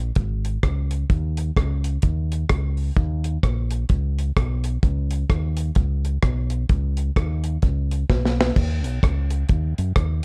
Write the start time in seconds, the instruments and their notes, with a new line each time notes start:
0.15 fingered electric bass G#1, kick, closed hi-hat
0.45 closed hi-hat
0.63 fingered electric bass C#2, kick, cross-stick, closed hi-hat
0.91 closed hi-hat
1.10 fingered electric bass D#2, kick, closed hi-hat
1.37 closed hi-hat
1.57 fingered electric bass C#2, kick, cross-stick, closed hi-hat
1.84 closed hi-hat
2.02 fingered electric bass D#2, kick, closed hi-hat
2.32 closed hi-hat
2.49 fingered electric bass C#2, kick, cross-stick, closed hi-hat
2.77 open hi-hat
2.96 fingered electric bass D#2, kick, closed hi-hat
3.24 closed hi-hat
3.43 fingered electric bass A#1, kick, cross-stick, closed hi-hat
3.71 closed hi-hat
3.89 fingered electric bass C#2, kick, closed hi-hat
4.19 closed hi-hat
4.37 fingered electric bass B1, kick, cross-stick, closed hi-hat
4.64 closed hi-hat
4.83 fingered electric bass C#2, kick, closed hi-hat
5.11 closed hi-hat
5.30 fingered electric bass D#2, kick, cross-stick, closed hi-hat
5.57 closed hi-hat
5.75 fingered electric bass C#2, kick, closed hi-hat
6.05 closed hi-hat
6.23 fingered electric bass B1, kick, cross-stick, closed hi-hat
6.50 closed hi-hat
6.69 fingered electric bass C#2, kick, closed hi-hat
6.97 closed hi-hat
7.16 fingered electric bass D#2, kick, cross-stick, closed hi-hat
7.44 closed hi-hat
7.62 fingered electric bass C#2, kick, closed hi-hat
7.91 closed hi-hat
8.10 fingered electric bass B1, kick, snare
8.25 snare
8.41 snare
8.56 fingered electric bass D#2, kick, crash
8.84 fingered electric bass B1, closed hi-hat
9.03 fingered electric bass C#2, kick, cross-stick, closed hi-hat
9.30 closed hi-hat
9.49 fingered electric bass D#2, kick, closed hi-hat
9.78 fingered electric bass F#2, closed hi-hat
9.96 fingered electric bass D#2, kick, cross-stick, closed hi-hat